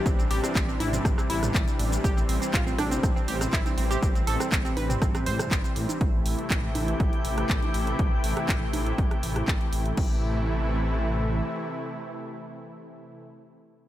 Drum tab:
CC |----------------|----------------|----------------|----------------|
HH |x-oxx-oxx-oxxxox|x-oxx-oxx-oxxxox|xxoxxxoxxxoxxxox|x-oxx-oxxxoxxxox|
SH |xx-xxx-xxx-xxx-x|xx-xxx-xxx-xxx-x|xx-xxx-xxx-xxx-x|----------------|
CP |----x-------x---|----x-------x---|----x-------x---|----x-------x---|
SD |---r----rr-r----|------r-r--r----|---r----rr-r----|-----------r----|
T2 |-------oo--o----|----------------|-------oo--o----|----------------|
CG |------o---------|------o------o--|------o--------o|------o------o--|
BD |o---o---o---o---|o---o---o---o---|o---o---o---o---|o---o---o---o---|

CC |----------------|x---------------|----------------|
HH |x-oxx-oxxxoxxxox|----------------|----------------|
SH |----------------|----------------|----------------|
CP |----x-------x---|----------------|----------------|
SD |---r-----r-r----|----------------|----------------|
T2 |----------------|----------------|----------------|
CG |------o---------|----------------|----------------|
BD |o---o---o---o---|o---------------|----------------|